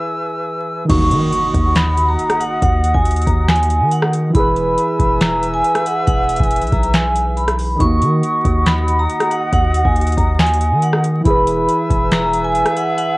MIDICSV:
0, 0, Header, 1, 7, 480
1, 0, Start_track
1, 0, Tempo, 431655
1, 995, Time_signature, 4, 2, 24, 8
1, 14652, End_track
2, 0, Start_track
2, 0, Title_t, "Vibraphone"
2, 0, Program_c, 0, 11
2, 999, Note_on_c, 0, 85, 118
2, 1912, Note_off_c, 0, 85, 0
2, 1949, Note_on_c, 0, 83, 100
2, 2290, Note_off_c, 0, 83, 0
2, 2321, Note_on_c, 0, 82, 86
2, 2657, Note_off_c, 0, 82, 0
2, 2673, Note_on_c, 0, 78, 81
2, 2871, Note_off_c, 0, 78, 0
2, 2922, Note_on_c, 0, 78, 112
2, 3257, Note_off_c, 0, 78, 0
2, 3272, Note_on_c, 0, 80, 75
2, 3371, Note_off_c, 0, 80, 0
2, 3631, Note_on_c, 0, 82, 77
2, 3830, Note_off_c, 0, 82, 0
2, 3873, Note_on_c, 0, 80, 84
2, 4325, Note_off_c, 0, 80, 0
2, 4361, Note_on_c, 0, 78, 88
2, 4555, Note_off_c, 0, 78, 0
2, 4837, Note_on_c, 0, 83, 91
2, 5751, Note_off_c, 0, 83, 0
2, 5792, Note_on_c, 0, 82, 99
2, 6132, Note_off_c, 0, 82, 0
2, 6158, Note_on_c, 0, 80, 83
2, 6495, Note_off_c, 0, 80, 0
2, 6518, Note_on_c, 0, 78, 80
2, 6714, Note_off_c, 0, 78, 0
2, 6751, Note_on_c, 0, 78, 106
2, 7091, Note_off_c, 0, 78, 0
2, 7115, Note_on_c, 0, 80, 76
2, 7213, Note_off_c, 0, 80, 0
2, 7473, Note_on_c, 0, 82, 73
2, 7671, Note_off_c, 0, 82, 0
2, 7717, Note_on_c, 0, 80, 92
2, 8167, Note_off_c, 0, 80, 0
2, 8193, Note_on_c, 0, 83, 89
2, 8645, Note_off_c, 0, 83, 0
2, 8678, Note_on_c, 0, 85, 113
2, 9592, Note_off_c, 0, 85, 0
2, 9630, Note_on_c, 0, 83, 103
2, 9971, Note_off_c, 0, 83, 0
2, 10000, Note_on_c, 0, 82, 83
2, 10336, Note_off_c, 0, 82, 0
2, 10353, Note_on_c, 0, 78, 77
2, 10551, Note_off_c, 0, 78, 0
2, 10603, Note_on_c, 0, 78, 108
2, 10938, Note_off_c, 0, 78, 0
2, 10954, Note_on_c, 0, 80, 75
2, 11053, Note_off_c, 0, 80, 0
2, 11313, Note_on_c, 0, 82, 78
2, 11510, Note_off_c, 0, 82, 0
2, 11555, Note_on_c, 0, 80, 88
2, 12006, Note_off_c, 0, 80, 0
2, 12043, Note_on_c, 0, 78, 88
2, 12236, Note_off_c, 0, 78, 0
2, 12520, Note_on_c, 0, 83, 94
2, 13433, Note_off_c, 0, 83, 0
2, 13476, Note_on_c, 0, 82, 100
2, 13814, Note_off_c, 0, 82, 0
2, 13839, Note_on_c, 0, 80, 84
2, 14176, Note_off_c, 0, 80, 0
2, 14203, Note_on_c, 0, 78, 80
2, 14396, Note_off_c, 0, 78, 0
2, 14433, Note_on_c, 0, 78, 107
2, 14652, Note_off_c, 0, 78, 0
2, 14652, End_track
3, 0, Start_track
3, 0, Title_t, "Flute section"
3, 0, Program_c, 1, 73
3, 0, Note_on_c, 1, 71, 82
3, 0, Note_on_c, 1, 76, 76
3, 0, Note_on_c, 1, 80, 74
3, 0, Note_on_c, 1, 88, 91
3, 956, Note_off_c, 1, 71, 0
3, 956, Note_off_c, 1, 76, 0
3, 956, Note_off_c, 1, 80, 0
3, 956, Note_off_c, 1, 88, 0
3, 995, Note_on_c, 1, 66, 84
3, 996, Note_on_c, 1, 75, 75
3, 996, Note_on_c, 1, 78, 77
3, 996, Note_on_c, 1, 87, 95
3, 4797, Note_off_c, 1, 66, 0
3, 4797, Note_off_c, 1, 75, 0
3, 4797, Note_off_c, 1, 78, 0
3, 4797, Note_off_c, 1, 87, 0
3, 4834, Note_on_c, 1, 80, 77
3, 4835, Note_on_c, 1, 71, 82
3, 4835, Note_on_c, 1, 76, 78
3, 4835, Note_on_c, 1, 88, 90
3, 8363, Note_off_c, 1, 88, 0
3, 8372, Note_off_c, 1, 80, 0
3, 8383, Note_off_c, 1, 76, 0
3, 8408, Note_off_c, 1, 71, 0
3, 8673, Note_on_c, 1, 66, 86
3, 8674, Note_on_c, 1, 75, 76
3, 8674, Note_on_c, 1, 78, 76
3, 8674, Note_on_c, 1, 87, 94
3, 12476, Note_off_c, 1, 66, 0
3, 12476, Note_off_c, 1, 75, 0
3, 12476, Note_off_c, 1, 78, 0
3, 12476, Note_off_c, 1, 87, 0
3, 12514, Note_on_c, 1, 71, 84
3, 12514, Note_on_c, 1, 76, 79
3, 12514, Note_on_c, 1, 80, 77
3, 12515, Note_on_c, 1, 88, 92
3, 14652, Note_off_c, 1, 71, 0
3, 14652, Note_off_c, 1, 76, 0
3, 14652, Note_off_c, 1, 80, 0
3, 14652, Note_off_c, 1, 88, 0
3, 14652, End_track
4, 0, Start_track
4, 0, Title_t, "Synth keys"
4, 0, Program_c, 2, 88
4, 0, Control_c, 2, 64, 127
4, 0, Note_on_c, 2, 52, 82
4, 0, Note_on_c, 2, 64, 74
4, 0, Note_on_c, 2, 68, 79
4, 0, Note_on_c, 2, 71, 92
4, 925, Note_off_c, 2, 52, 0
4, 942, Note_off_c, 2, 64, 0
4, 943, Note_on_c, 2, 51, 71
4, 959, Note_off_c, 2, 68, 0
4, 977, Note_off_c, 2, 71, 0
4, 979, Note_on_c, 2, 63, 62
4, 1008, Control_c, 2, 64, 0
4, 1013, Note_on_c, 2, 66, 63
4, 1048, Note_on_c, 2, 58, 73
4, 1200, Control_c, 2, 64, 127
4, 4765, Note_off_c, 2, 51, 0
4, 4782, Note_off_c, 2, 63, 0
4, 4783, Note_on_c, 2, 52, 82
4, 4800, Note_off_c, 2, 66, 0
4, 4817, Note_off_c, 2, 58, 0
4, 4818, Note_on_c, 2, 64, 74
4, 4849, Control_c, 2, 64, 0
4, 4853, Note_on_c, 2, 68, 80
4, 4888, Note_on_c, 2, 71, 96
4, 5060, Control_c, 2, 64, 127
4, 8604, Note_off_c, 2, 52, 0
4, 8622, Note_off_c, 2, 64, 0
4, 8623, Note_on_c, 2, 51, 69
4, 8640, Note_off_c, 2, 68, 0
4, 8657, Note_off_c, 2, 71, 0
4, 8658, Note_on_c, 2, 63, 63
4, 8689, Control_c, 2, 64, 0
4, 8693, Note_on_c, 2, 66, 67
4, 8728, Note_on_c, 2, 58, 78
4, 8899, Control_c, 2, 64, 127
4, 12444, Note_off_c, 2, 51, 0
4, 12462, Note_off_c, 2, 63, 0
4, 12463, Note_on_c, 2, 52, 83
4, 12479, Note_off_c, 2, 66, 0
4, 12497, Note_off_c, 2, 58, 0
4, 12498, Note_on_c, 2, 64, 75
4, 12530, Control_c, 2, 64, 0
4, 12533, Note_on_c, 2, 68, 81
4, 12567, Note_on_c, 2, 71, 90
4, 12695, Control_c, 2, 64, 127
4, 14652, Note_off_c, 2, 52, 0
4, 14652, Note_off_c, 2, 64, 0
4, 14652, Note_off_c, 2, 68, 0
4, 14652, Note_off_c, 2, 71, 0
4, 14652, End_track
5, 0, Start_track
5, 0, Title_t, "808-style bass"
5, 0, Program_c, 3, 38
5, 995, Note_on_c, 3, 39, 104
5, 1236, Note_on_c, 3, 51, 98
5, 1252, Note_off_c, 3, 39, 0
5, 1463, Note_off_c, 3, 51, 0
5, 1715, Note_on_c, 3, 39, 107
5, 2406, Note_off_c, 3, 39, 0
5, 2915, Note_on_c, 3, 39, 115
5, 3261, Note_off_c, 3, 39, 0
5, 3275, Note_on_c, 3, 39, 101
5, 3621, Note_off_c, 3, 39, 0
5, 3635, Note_on_c, 3, 39, 114
5, 4235, Note_on_c, 3, 51, 99
5, 4252, Note_off_c, 3, 39, 0
5, 4805, Note_off_c, 3, 51, 0
5, 4835, Note_on_c, 3, 28, 115
5, 5296, Note_off_c, 3, 28, 0
5, 5555, Note_on_c, 3, 28, 107
5, 6246, Note_off_c, 3, 28, 0
5, 6755, Note_on_c, 3, 28, 109
5, 7101, Note_off_c, 3, 28, 0
5, 7115, Note_on_c, 3, 28, 106
5, 7355, Note_on_c, 3, 35, 97
5, 7372, Note_off_c, 3, 28, 0
5, 7469, Note_off_c, 3, 35, 0
5, 7476, Note_on_c, 3, 35, 107
5, 8631, Note_off_c, 3, 35, 0
5, 8675, Note_on_c, 3, 39, 107
5, 8915, Note_on_c, 3, 51, 103
5, 8931, Note_off_c, 3, 39, 0
5, 9143, Note_off_c, 3, 51, 0
5, 9395, Note_on_c, 3, 39, 109
5, 10086, Note_off_c, 3, 39, 0
5, 10595, Note_on_c, 3, 39, 109
5, 10940, Note_off_c, 3, 39, 0
5, 10955, Note_on_c, 3, 39, 104
5, 11301, Note_off_c, 3, 39, 0
5, 11316, Note_on_c, 3, 39, 111
5, 11914, Note_on_c, 3, 51, 100
5, 11931, Note_off_c, 3, 39, 0
5, 12485, Note_off_c, 3, 51, 0
5, 12515, Note_on_c, 3, 28, 110
5, 12976, Note_off_c, 3, 28, 0
5, 13235, Note_on_c, 3, 28, 106
5, 14041, Note_off_c, 3, 28, 0
5, 14652, End_track
6, 0, Start_track
6, 0, Title_t, "Impact"
6, 0, Program_c, 4, 103
6, 995, Note_on_c, 4, 60, 89
6, 2915, Note_off_c, 4, 60, 0
6, 14652, End_track
7, 0, Start_track
7, 0, Title_t, "Drums"
7, 995, Note_on_c, 9, 36, 116
7, 995, Note_on_c, 9, 42, 76
7, 995, Note_on_c, 9, 49, 104
7, 1106, Note_off_c, 9, 36, 0
7, 1106, Note_off_c, 9, 42, 0
7, 1106, Note_off_c, 9, 49, 0
7, 1236, Note_on_c, 9, 42, 86
7, 1347, Note_off_c, 9, 42, 0
7, 1474, Note_on_c, 9, 42, 76
7, 1585, Note_off_c, 9, 42, 0
7, 1715, Note_on_c, 9, 36, 87
7, 1718, Note_on_c, 9, 42, 70
7, 1826, Note_off_c, 9, 36, 0
7, 1829, Note_off_c, 9, 42, 0
7, 1952, Note_on_c, 9, 42, 79
7, 1955, Note_on_c, 9, 38, 114
7, 1968, Note_on_c, 9, 26, 94
7, 2063, Note_off_c, 9, 42, 0
7, 2066, Note_off_c, 9, 38, 0
7, 2079, Note_off_c, 9, 26, 0
7, 2195, Note_on_c, 9, 42, 76
7, 2306, Note_off_c, 9, 42, 0
7, 2435, Note_on_c, 9, 42, 63
7, 2546, Note_off_c, 9, 42, 0
7, 2555, Note_on_c, 9, 37, 92
7, 2555, Note_on_c, 9, 42, 60
7, 2666, Note_off_c, 9, 37, 0
7, 2666, Note_off_c, 9, 42, 0
7, 2677, Note_on_c, 9, 42, 74
7, 2788, Note_off_c, 9, 42, 0
7, 2915, Note_on_c, 9, 36, 117
7, 2915, Note_on_c, 9, 42, 78
7, 3026, Note_off_c, 9, 36, 0
7, 3026, Note_off_c, 9, 42, 0
7, 3155, Note_on_c, 9, 42, 80
7, 3267, Note_off_c, 9, 42, 0
7, 3275, Note_on_c, 9, 36, 102
7, 3386, Note_off_c, 9, 36, 0
7, 3394, Note_on_c, 9, 42, 61
7, 3455, Note_off_c, 9, 42, 0
7, 3455, Note_on_c, 9, 42, 61
7, 3515, Note_off_c, 9, 42, 0
7, 3515, Note_on_c, 9, 42, 60
7, 3575, Note_off_c, 9, 42, 0
7, 3575, Note_on_c, 9, 42, 59
7, 3635, Note_on_c, 9, 36, 91
7, 3637, Note_off_c, 9, 42, 0
7, 3637, Note_on_c, 9, 42, 69
7, 3746, Note_off_c, 9, 36, 0
7, 3748, Note_off_c, 9, 42, 0
7, 3874, Note_on_c, 9, 38, 120
7, 3874, Note_on_c, 9, 42, 69
7, 3887, Note_on_c, 9, 26, 95
7, 3954, Note_off_c, 9, 42, 0
7, 3954, Note_on_c, 9, 42, 68
7, 3985, Note_off_c, 9, 38, 0
7, 3998, Note_off_c, 9, 26, 0
7, 4034, Note_off_c, 9, 42, 0
7, 4034, Note_on_c, 9, 42, 70
7, 4115, Note_off_c, 9, 42, 0
7, 4115, Note_on_c, 9, 42, 82
7, 4226, Note_off_c, 9, 42, 0
7, 4352, Note_on_c, 9, 42, 71
7, 4464, Note_off_c, 9, 42, 0
7, 4474, Note_on_c, 9, 37, 96
7, 4585, Note_off_c, 9, 37, 0
7, 4596, Note_on_c, 9, 42, 80
7, 4707, Note_off_c, 9, 42, 0
7, 4835, Note_on_c, 9, 36, 116
7, 4835, Note_on_c, 9, 42, 79
7, 4946, Note_off_c, 9, 36, 0
7, 4946, Note_off_c, 9, 42, 0
7, 5075, Note_on_c, 9, 42, 89
7, 5186, Note_off_c, 9, 42, 0
7, 5314, Note_on_c, 9, 42, 76
7, 5425, Note_off_c, 9, 42, 0
7, 5555, Note_on_c, 9, 36, 89
7, 5558, Note_on_c, 9, 42, 68
7, 5666, Note_off_c, 9, 36, 0
7, 5669, Note_off_c, 9, 42, 0
7, 5792, Note_on_c, 9, 42, 82
7, 5795, Note_on_c, 9, 38, 117
7, 5808, Note_on_c, 9, 26, 93
7, 5903, Note_off_c, 9, 42, 0
7, 5906, Note_off_c, 9, 38, 0
7, 5919, Note_off_c, 9, 26, 0
7, 6036, Note_on_c, 9, 42, 75
7, 6147, Note_off_c, 9, 42, 0
7, 6275, Note_on_c, 9, 42, 59
7, 6386, Note_off_c, 9, 42, 0
7, 6395, Note_on_c, 9, 37, 93
7, 6395, Note_on_c, 9, 42, 61
7, 6506, Note_off_c, 9, 37, 0
7, 6506, Note_off_c, 9, 42, 0
7, 6517, Note_on_c, 9, 42, 73
7, 6628, Note_off_c, 9, 42, 0
7, 6755, Note_on_c, 9, 36, 118
7, 6755, Note_on_c, 9, 42, 81
7, 6866, Note_off_c, 9, 36, 0
7, 6866, Note_off_c, 9, 42, 0
7, 6995, Note_on_c, 9, 42, 81
7, 7076, Note_off_c, 9, 42, 0
7, 7076, Note_on_c, 9, 42, 66
7, 7115, Note_on_c, 9, 36, 101
7, 7156, Note_off_c, 9, 42, 0
7, 7156, Note_on_c, 9, 42, 51
7, 7227, Note_off_c, 9, 36, 0
7, 7236, Note_off_c, 9, 42, 0
7, 7236, Note_on_c, 9, 42, 71
7, 7296, Note_off_c, 9, 42, 0
7, 7296, Note_on_c, 9, 42, 62
7, 7356, Note_off_c, 9, 42, 0
7, 7356, Note_on_c, 9, 42, 51
7, 7415, Note_off_c, 9, 42, 0
7, 7415, Note_on_c, 9, 42, 42
7, 7475, Note_off_c, 9, 42, 0
7, 7475, Note_on_c, 9, 36, 89
7, 7475, Note_on_c, 9, 42, 41
7, 7586, Note_off_c, 9, 42, 0
7, 7587, Note_off_c, 9, 36, 0
7, 7595, Note_on_c, 9, 42, 73
7, 7706, Note_off_c, 9, 42, 0
7, 7712, Note_on_c, 9, 42, 84
7, 7714, Note_on_c, 9, 38, 121
7, 7728, Note_on_c, 9, 26, 93
7, 7823, Note_off_c, 9, 42, 0
7, 7826, Note_off_c, 9, 38, 0
7, 7839, Note_off_c, 9, 26, 0
7, 7956, Note_on_c, 9, 42, 84
7, 8067, Note_off_c, 9, 42, 0
7, 8195, Note_on_c, 9, 42, 61
7, 8306, Note_off_c, 9, 42, 0
7, 8315, Note_on_c, 9, 37, 91
7, 8315, Note_on_c, 9, 42, 61
7, 8426, Note_off_c, 9, 37, 0
7, 8427, Note_off_c, 9, 42, 0
7, 8436, Note_on_c, 9, 46, 54
7, 8548, Note_off_c, 9, 46, 0
7, 8675, Note_on_c, 9, 36, 118
7, 8675, Note_on_c, 9, 42, 80
7, 8786, Note_off_c, 9, 36, 0
7, 8786, Note_off_c, 9, 42, 0
7, 8915, Note_on_c, 9, 42, 88
7, 9027, Note_off_c, 9, 42, 0
7, 9154, Note_on_c, 9, 42, 75
7, 9265, Note_off_c, 9, 42, 0
7, 9395, Note_on_c, 9, 36, 87
7, 9398, Note_on_c, 9, 42, 66
7, 9506, Note_off_c, 9, 36, 0
7, 9509, Note_off_c, 9, 42, 0
7, 9633, Note_on_c, 9, 42, 83
7, 9635, Note_on_c, 9, 38, 116
7, 9649, Note_on_c, 9, 26, 93
7, 9744, Note_off_c, 9, 42, 0
7, 9747, Note_off_c, 9, 38, 0
7, 9760, Note_off_c, 9, 26, 0
7, 9876, Note_on_c, 9, 42, 74
7, 9987, Note_off_c, 9, 42, 0
7, 10115, Note_on_c, 9, 42, 59
7, 10226, Note_off_c, 9, 42, 0
7, 10235, Note_on_c, 9, 37, 90
7, 10235, Note_on_c, 9, 42, 63
7, 10346, Note_off_c, 9, 37, 0
7, 10347, Note_off_c, 9, 42, 0
7, 10356, Note_on_c, 9, 42, 69
7, 10468, Note_off_c, 9, 42, 0
7, 10595, Note_on_c, 9, 36, 110
7, 10595, Note_on_c, 9, 42, 78
7, 10706, Note_off_c, 9, 36, 0
7, 10706, Note_off_c, 9, 42, 0
7, 10835, Note_on_c, 9, 42, 80
7, 10946, Note_off_c, 9, 42, 0
7, 10955, Note_on_c, 9, 36, 105
7, 11067, Note_off_c, 9, 36, 0
7, 11076, Note_on_c, 9, 42, 59
7, 11135, Note_off_c, 9, 42, 0
7, 11135, Note_on_c, 9, 42, 61
7, 11196, Note_off_c, 9, 42, 0
7, 11196, Note_on_c, 9, 42, 59
7, 11255, Note_off_c, 9, 42, 0
7, 11255, Note_on_c, 9, 42, 59
7, 11316, Note_on_c, 9, 36, 86
7, 11319, Note_off_c, 9, 42, 0
7, 11319, Note_on_c, 9, 42, 69
7, 11427, Note_off_c, 9, 36, 0
7, 11430, Note_off_c, 9, 42, 0
7, 11555, Note_on_c, 9, 38, 116
7, 11555, Note_on_c, 9, 42, 70
7, 11568, Note_on_c, 9, 26, 90
7, 11635, Note_off_c, 9, 42, 0
7, 11635, Note_on_c, 9, 42, 70
7, 11666, Note_off_c, 9, 38, 0
7, 11680, Note_off_c, 9, 26, 0
7, 11715, Note_off_c, 9, 42, 0
7, 11715, Note_on_c, 9, 42, 70
7, 11796, Note_off_c, 9, 42, 0
7, 11796, Note_on_c, 9, 42, 84
7, 11907, Note_off_c, 9, 42, 0
7, 12033, Note_on_c, 9, 42, 71
7, 12145, Note_off_c, 9, 42, 0
7, 12155, Note_on_c, 9, 37, 92
7, 12266, Note_off_c, 9, 37, 0
7, 12277, Note_on_c, 9, 42, 78
7, 12388, Note_off_c, 9, 42, 0
7, 12515, Note_on_c, 9, 36, 115
7, 12515, Note_on_c, 9, 42, 77
7, 12626, Note_off_c, 9, 36, 0
7, 12626, Note_off_c, 9, 42, 0
7, 12756, Note_on_c, 9, 42, 87
7, 12867, Note_off_c, 9, 42, 0
7, 12995, Note_on_c, 9, 42, 74
7, 13106, Note_off_c, 9, 42, 0
7, 13235, Note_on_c, 9, 36, 91
7, 13238, Note_on_c, 9, 42, 69
7, 13346, Note_off_c, 9, 36, 0
7, 13349, Note_off_c, 9, 42, 0
7, 13472, Note_on_c, 9, 42, 83
7, 13475, Note_on_c, 9, 38, 115
7, 13488, Note_on_c, 9, 26, 91
7, 13583, Note_off_c, 9, 42, 0
7, 13586, Note_off_c, 9, 38, 0
7, 13599, Note_off_c, 9, 26, 0
7, 13716, Note_on_c, 9, 42, 77
7, 13827, Note_off_c, 9, 42, 0
7, 13955, Note_on_c, 9, 42, 60
7, 14066, Note_off_c, 9, 42, 0
7, 14075, Note_on_c, 9, 37, 92
7, 14075, Note_on_c, 9, 42, 60
7, 14186, Note_off_c, 9, 37, 0
7, 14186, Note_off_c, 9, 42, 0
7, 14197, Note_on_c, 9, 42, 70
7, 14308, Note_off_c, 9, 42, 0
7, 14435, Note_on_c, 9, 42, 78
7, 14546, Note_off_c, 9, 42, 0
7, 14652, End_track
0, 0, End_of_file